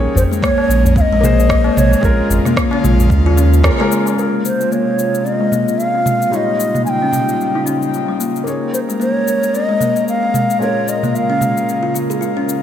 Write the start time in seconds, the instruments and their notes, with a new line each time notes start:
Already playing: analog synth pad G#3 A#3, felt piano A#3 C#4 G#4 C#5
0.16 sub bass G#1, ney C5, tabla tin, tabla ge, shaker
0.32 kalimba G#3, shaker
0.43 kalimba A#3, ney C#5, kick, cross-stick, shaker
0.58 tabla na
0.69 sub bass A#1, tabla na, shaker
0.84 tabla tin, tabla ge, shaker
0.96 kalimba C4, ney F5, kick, shaker
1.01 ney D#5
1.12 sub bass A#1, kalimba G#3, tabla tin
1.21 felt piano A#3 G#4, kalimba A#3, mid tom, shaker
1.25 felt piano C5
1.38 tabla na, tabla tin, shaker
1.49 kick, cross-stick, shaker
1.64 kalimba C4, tabla na
1.77 sub bass A#1, kalimba G#3, ney C#5, mid tom, shaker
1.91 tabla na, shaker
2.01 sub bass A#1, analog synth pad C#3 F4, felt piano G#3 C#4 F4, kick, shaker
2.05 felt piano A#4
2.30 sub bass G#1, tabla tin, tabla ge, shaker
2.45 kalimba A#3, cross-stick, mid tom, shaker
2.57 kick, cross-stick, shaker
2.71 kalimba C#4, tabla na
2.83 sub bass A#1, kalimba G#3, mid tom, tabla na, shaker
2.98 tabla tin, tabla ge, shaker
3.10 sub bass D#2, kick, shaker
3.25 kalimba F4, tabla na, tabla tin
3.37 kalimba C#4, tabla na, shaker
3.54 shaker
3.63 felt piano G#3 C#4 F4 A#4, kick, cross-stick, shaker
3.79 felt piano G#3 C#4 F4 A#4, kalimba G#3
3.91 kalimba A#3, shaker
4.06 tabla na, shaker
4.15 analog synth pad C3 G#3 A#3 F4, felt piano A#3 F4 G#4 A#4, shaker
4.45 ney C5, shaker
4.60 kalimba G#3, shaker
4.72 kalimba A#3, ney C#5, shaker
4.99 shaker
5.15 shaker
5.25 kalimba C4, ney D#5, shaker
5.41 kalimba G#3
5.52 kalimba A#3, mid tom, shaker
5.68 shaker
5.78 ney F5, shaker
5.95 kalimba C4
6.06 kalimba G#3, mid tom, shaker
6.22 shaker
6.30 felt piano A#2 G3 D#4 F4 C#5, analog synth pad C#3 G3 D#4, ney F5, shaker
6.36 ney D#5
6.60 shaker
6.75 kalimba A#3, mid tom, shaker
6.85 ney G#5, shaker
6.89 ney G5
7.02 kalimba C#4
7.13 kalimba G3, mid tom, shaker
7.29 shaker
7.41 shaker
7.55 kalimba D#4
7.66 kalimba C#4, shaker
7.82 shaker
7.94 shaker
8.08 kalimba G3
8.20 kalimba A#3, shaker
8.36 shaker
8.44 analog synth pad G#3 A#4, felt piano A#3 G#4, shaker
8.48 felt piano C#5
8.73 ney C5, shaker
8.89 kalimba G#3, shaker
9.00 kalimba A#3, ney C5, shaker
9.12 ney C#5
9.28 shaker
9.43 shaker
9.54 kalimba C4, ney D#5, shaker
9.69 kalimba G#3
9.80 kalimba A#3, mid tom, shaker
9.96 shaker
10.08 ney F5, shaker
10.23 kalimba C4
10.34 kalimba G#3, mid tom, shaker
10.50 shaker
10.59 felt piano A#2 G#3 C#4 F4, analog synth pad C#3 F4, ney C#5, shaker
10.63 felt piano A#4
10.88 ney D#5, shaker
11.03 kalimba A#3, mid tom, shaker
11.15 ney F5, shaker
11.30 kalimba C#4
11.41 kalimba G#3, mid tom, shaker
11.57 shaker
11.69 shaker
11.83 kalimba F4
11.94 kalimba F4, shaker
12.10 kalimba G#4, shaker
12.21 kalimba F4, shaker
12.37 kalimba C#4
12.48 kalimba C#4, shaker